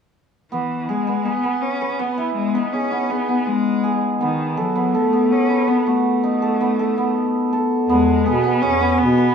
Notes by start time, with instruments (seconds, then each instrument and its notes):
0.52 cello E3, hammered dulcimer B3
0.88 cello G#3, hammered dulcimer G#4
1.07 hammered dulcimer B3
1.25 cello B3, hammered dulcimer G#4
1.43 hammered dulcimer B3
1.62 cello C#4
1.81 hammered dulcimer B4
1.99 cello B3, hammered dulcimer B3
2.18 hammered dulcimer E4
2.36 cello G#3
2.54 cello B3, hammered dulcimer D#4
2.73 cello C#4, hammered dulcimer G#4
2.92 hammered dulcimer B3
3.10 cello B3, hammered dulcimer G#4
3.28 hammered dulcimer B3
3.47 cello G#3
3.84 hammered dulcimer G#4
4.20 cello D#3, hammered dulcimer B3
4.57 cello F#3, hammered dulcimer A4
4.75 hammered dulcimer B3
4.95 cello A3, hammered dulcimer A4
5.13 hammered dulcimer B3
5.32 cello C#4
5.50 hammered dulcimer B4
5.68 hammered dulcimer B3, cello B3
5.87 cello A3, hammered dulcimer F#4
6.24 hammered dulcimer D#4
6.42 hammered dulcimer A4
6.61 hammered dulcimer B3
6.79 hammered dulcimer A4
6.98 hammered dulcimer B3
7.53 hammered dulcimer A4
7.89 bass clarinet E2, cello G#3, hammered dulcimer B3
8.25 bass clarinet B2, cello B3, hammered dulcimer G#4
8.44 hammered dulcimer B3
8.62 bass clarinet E2, cello C#4, hammered dulcimer G#4
8.81 hammered dulcimer B3
8.98 bass clarinet B2, cello B3
9.18 hammered dulcimer B4